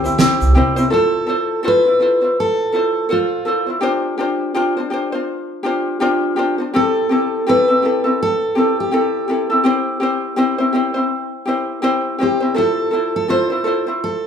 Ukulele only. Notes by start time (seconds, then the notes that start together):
0.04 C4 E4 C5
0.18 C4 E4 G4 C5
0.55 C4 E4 G4 C5
0.76 C4 E4 C5
0.90 E4 F4 A4 C5
1.27 E4 F4 A4 C5
1.63 E4 F4 A4 C5
1.85 E4 F4 C5
1.99 E4 F4 A4 C5
2.21 E4 F4 C5
2.72 E4 F4 A4 C5
3.09 F4 A4 C5
3.45 E4 F4 A4 C5
3.67 E4 F4 C5
3.81 D4 F4 G4 C5
4.18 D4 F4 G4 C5
4.55 D4 F4 G4 C5
4.77 D4 C5
4.90 D4 F4 G4 C5
5.12 D4 F4 C5
5.63 D4 F4 G4 C5
6.00 D4 F4 G4 C5
6.36 D4 F4 G4 C5
6.58 D4 C5
6.74 C4 E4 G4 A4
7.09 C4 E4 G4 A4
7.47 C4 E4 G4 A4
7.68 C4 E4 A4
7.82 C4 E4 G4 A4
8.04 C4 E4 A4
8.55 C4 E4 G4 A4
8.91 C4 E4 G4 A4
9.28 C4 E4 G4 A4
9.50 C4 E4 A4
9.64 C4 E4 G4 C5
10.00 C4 E4 G4 C5
10.36 C4 E4 G4 C5
10.58 C4 E4 C5
10.73 C4 E4 G4 C5
10.94 C4 E4 C5
11.46 C4 E4 G4 C5
11.82 C4 E4 G4 C5
12.18 C4 E4 G4 C5
12.40 C4 E4 C5
12.54 E4 F4 A4 C5
12.91 E4 F4 A4 C5
13.28 E4 F4 A4 C5
13.50 E4 F4 C5
13.64 E4 F4 A4 C5
13.87 E4 F4 C5